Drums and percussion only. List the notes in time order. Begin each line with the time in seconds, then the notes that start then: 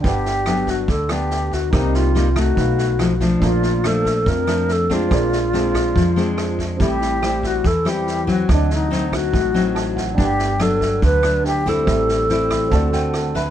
0.04 kick, snare
0.25 snare
0.46 cross-stick, snare
0.67 kick, snare
0.88 kick, snare
1.09 cross-stick, snare
1.31 snare
1.52 kick, snare
1.73 kick, cross-stick, snare
1.94 snare
2.15 snare
2.36 kick, cross-stick, snare
2.57 kick, snare
2.78 snare
2.99 cross-stick, snare
3.20 kick, snare
3.41 kick, snare
3.63 snare
3.84 cross-stick, snare
4.05 kick, snare
4.26 kick, snare
4.47 cross-stick, snare
4.68 snare
4.90 kick, snare
5.11 kick, cross-stick, snare
5.32 snare
5.54 snare
5.75 kick, cross-stick, snare
5.96 kick, snare
6.17 snare
6.38 cross-stick, snare
6.59 kick, snare
6.80 kick, snare
7.01 snare
7.23 cross-stick, snare
7.43 kick, snare
7.64 kick, snare
7.86 cross-stick, snare
8.07 snare
8.28 kick, snare
8.49 kick, cross-stick, snare
8.70 snare
8.92 snare
9.12 kick, cross-stick, snare
9.34 kick, snare
9.55 snare
9.76 cross-stick, snare
9.97 kick, snare
10.18 kick, snare
10.39 snare
10.60 cross-stick, snare
10.81 kick, snare
11.02 kick, snare
11.23 cross-stick, snare
11.45 snare
11.66 kick, snare
11.87 kick, cross-stick, snare
12.09 snare
12.29 snare
12.51 kick, cross-stick, snare
12.71 kick, snare
12.93 snare
13.14 cross-stick, snare
13.35 kick, snare